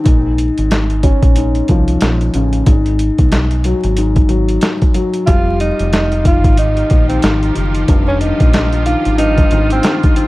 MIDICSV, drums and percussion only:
0, 0, Header, 1, 2, 480
1, 0, Start_track
1, 0, Key_signature, -4, "minor"
1, 0, Tempo, 652174
1, 43, Time_signature, 4, 2, 24, 8
1, 7562, End_track
2, 0, Start_track
2, 0, Title_t, "Drums"
2, 40, Note_on_c, 9, 42, 93
2, 43, Note_on_c, 9, 36, 124
2, 114, Note_off_c, 9, 42, 0
2, 117, Note_off_c, 9, 36, 0
2, 282, Note_on_c, 9, 42, 74
2, 355, Note_off_c, 9, 42, 0
2, 424, Note_on_c, 9, 42, 54
2, 497, Note_off_c, 9, 42, 0
2, 522, Note_on_c, 9, 42, 86
2, 528, Note_on_c, 9, 38, 122
2, 595, Note_off_c, 9, 42, 0
2, 601, Note_off_c, 9, 38, 0
2, 662, Note_on_c, 9, 42, 36
2, 736, Note_off_c, 9, 42, 0
2, 759, Note_on_c, 9, 42, 77
2, 762, Note_on_c, 9, 36, 91
2, 833, Note_off_c, 9, 42, 0
2, 835, Note_off_c, 9, 36, 0
2, 902, Note_on_c, 9, 36, 104
2, 902, Note_on_c, 9, 42, 59
2, 976, Note_off_c, 9, 36, 0
2, 976, Note_off_c, 9, 42, 0
2, 999, Note_on_c, 9, 42, 92
2, 1072, Note_off_c, 9, 42, 0
2, 1140, Note_on_c, 9, 42, 37
2, 1214, Note_off_c, 9, 42, 0
2, 1237, Note_on_c, 9, 42, 62
2, 1245, Note_on_c, 9, 36, 92
2, 1311, Note_off_c, 9, 42, 0
2, 1318, Note_off_c, 9, 36, 0
2, 1382, Note_on_c, 9, 42, 53
2, 1455, Note_off_c, 9, 42, 0
2, 1476, Note_on_c, 9, 42, 94
2, 1486, Note_on_c, 9, 38, 120
2, 1550, Note_off_c, 9, 42, 0
2, 1560, Note_off_c, 9, 38, 0
2, 1626, Note_on_c, 9, 42, 36
2, 1699, Note_off_c, 9, 42, 0
2, 1719, Note_on_c, 9, 42, 71
2, 1793, Note_off_c, 9, 42, 0
2, 1860, Note_on_c, 9, 42, 56
2, 1933, Note_off_c, 9, 42, 0
2, 1961, Note_on_c, 9, 42, 94
2, 1963, Note_on_c, 9, 36, 122
2, 2034, Note_off_c, 9, 42, 0
2, 2037, Note_off_c, 9, 36, 0
2, 2104, Note_on_c, 9, 42, 36
2, 2177, Note_off_c, 9, 42, 0
2, 2202, Note_on_c, 9, 42, 74
2, 2275, Note_off_c, 9, 42, 0
2, 2344, Note_on_c, 9, 42, 52
2, 2346, Note_on_c, 9, 36, 93
2, 2417, Note_off_c, 9, 42, 0
2, 2420, Note_off_c, 9, 36, 0
2, 2441, Note_on_c, 9, 42, 83
2, 2447, Note_on_c, 9, 38, 116
2, 2515, Note_off_c, 9, 42, 0
2, 2521, Note_off_c, 9, 38, 0
2, 2582, Note_on_c, 9, 42, 37
2, 2655, Note_off_c, 9, 42, 0
2, 2680, Note_on_c, 9, 42, 80
2, 2753, Note_off_c, 9, 42, 0
2, 2822, Note_on_c, 9, 42, 57
2, 2896, Note_off_c, 9, 42, 0
2, 2919, Note_on_c, 9, 42, 94
2, 2992, Note_off_c, 9, 42, 0
2, 3060, Note_on_c, 9, 42, 36
2, 3064, Note_on_c, 9, 36, 88
2, 3133, Note_off_c, 9, 42, 0
2, 3137, Note_off_c, 9, 36, 0
2, 3157, Note_on_c, 9, 42, 60
2, 3230, Note_off_c, 9, 42, 0
2, 3301, Note_on_c, 9, 42, 54
2, 3375, Note_off_c, 9, 42, 0
2, 3395, Note_on_c, 9, 42, 93
2, 3406, Note_on_c, 9, 38, 115
2, 3469, Note_off_c, 9, 42, 0
2, 3480, Note_off_c, 9, 38, 0
2, 3545, Note_on_c, 9, 42, 36
2, 3548, Note_on_c, 9, 36, 96
2, 3619, Note_off_c, 9, 42, 0
2, 3621, Note_off_c, 9, 36, 0
2, 3639, Note_on_c, 9, 42, 72
2, 3713, Note_off_c, 9, 42, 0
2, 3780, Note_on_c, 9, 42, 56
2, 3853, Note_off_c, 9, 42, 0
2, 3880, Note_on_c, 9, 42, 95
2, 3883, Note_on_c, 9, 36, 120
2, 3954, Note_off_c, 9, 42, 0
2, 3957, Note_off_c, 9, 36, 0
2, 4122, Note_on_c, 9, 42, 73
2, 4195, Note_off_c, 9, 42, 0
2, 4264, Note_on_c, 9, 42, 53
2, 4338, Note_off_c, 9, 42, 0
2, 4362, Note_on_c, 9, 42, 84
2, 4367, Note_on_c, 9, 38, 121
2, 4435, Note_off_c, 9, 42, 0
2, 4441, Note_off_c, 9, 38, 0
2, 4503, Note_on_c, 9, 42, 36
2, 4576, Note_off_c, 9, 42, 0
2, 4601, Note_on_c, 9, 42, 79
2, 4602, Note_on_c, 9, 36, 90
2, 4674, Note_off_c, 9, 42, 0
2, 4676, Note_off_c, 9, 36, 0
2, 4742, Note_on_c, 9, 36, 107
2, 4743, Note_on_c, 9, 42, 59
2, 4816, Note_off_c, 9, 36, 0
2, 4817, Note_off_c, 9, 42, 0
2, 4839, Note_on_c, 9, 42, 90
2, 4913, Note_off_c, 9, 42, 0
2, 4981, Note_on_c, 9, 42, 36
2, 5055, Note_off_c, 9, 42, 0
2, 5078, Note_on_c, 9, 42, 59
2, 5085, Note_on_c, 9, 36, 90
2, 5151, Note_off_c, 9, 42, 0
2, 5159, Note_off_c, 9, 36, 0
2, 5222, Note_on_c, 9, 42, 53
2, 5296, Note_off_c, 9, 42, 0
2, 5316, Note_on_c, 9, 42, 95
2, 5327, Note_on_c, 9, 38, 121
2, 5390, Note_off_c, 9, 42, 0
2, 5401, Note_off_c, 9, 38, 0
2, 5466, Note_on_c, 9, 42, 35
2, 5540, Note_off_c, 9, 42, 0
2, 5560, Note_on_c, 9, 42, 69
2, 5634, Note_off_c, 9, 42, 0
2, 5700, Note_on_c, 9, 42, 55
2, 5774, Note_off_c, 9, 42, 0
2, 5801, Note_on_c, 9, 42, 92
2, 5803, Note_on_c, 9, 36, 122
2, 5874, Note_off_c, 9, 42, 0
2, 5877, Note_off_c, 9, 36, 0
2, 6041, Note_on_c, 9, 42, 73
2, 6115, Note_off_c, 9, 42, 0
2, 6183, Note_on_c, 9, 42, 53
2, 6186, Note_on_c, 9, 36, 96
2, 6257, Note_off_c, 9, 42, 0
2, 6260, Note_off_c, 9, 36, 0
2, 6282, Note_on_c, 9, 42, 85
2, 6287, Note_on_c, 9, 38, 121
2, 6355, Note_off_c, 9, 42, 0
2, 6361, Note_off_c, 9, 38, 0
2, 6422, Note_on_c, 9, 42, 38
2, 6496, Note_off_c, 9, 42, 0
2, 6520, Note_on_c, 9, 42, 76
2, 6593, Note_off_c, 9, 42, 0
2, 6663, Note_on_c, 9, 42, 59
2, 6736, Note_off_c, 9, 42, 0
2, 6759, Note_on_c, 9, 42, 95
2, 6832, Note_off_c, 9, 42, 0
2, 6900, Note_on_c, 9, 42, 37
2, 6904, Note_on_c, 9, 36, 86
2, 6974, Note_off_c, 9, 42, 0
2, 6978, Note_off_c, 9, 36, 0
2, 6997, Note_on_c, 9, 42, 61
2, 7071, Note_off_c, 9, 42, 0
2, 7142, Note_on_c, 9, 42, 53
2, 7215, Note_off_c, 9, 42, 0
2, 7236, Note_on_c, 9, 42, 93
2, 7246, Note_on_c, 9, 38, 114
2, 7309, Note_off_c, 9, 42, 0
2, 7320, Note_off_c, 9, 38, 0
2, 7385, Note_on_c, 9, 42, 37
2, 7388, Note_on_c, 9, 36, 97
2, 7458, Note_off_c, 9, 42, 0
2, 7462, Note_off_c, 9, 36, 0
2, 7480, Note_on_c, 9, 42, 73
2, 7553, Note_off_c, 9, 42, 0
2, 7562, End_track
0, 0, End_of_file